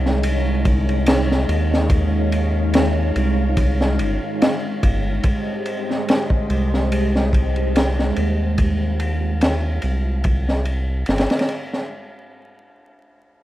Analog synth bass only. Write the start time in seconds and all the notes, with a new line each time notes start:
Already playing: C2
1.49 D#2
3.16 C2
4.00 G1
4.83 G1
6.50 C2
8.17 D#2
9.83 C2
11.08 G1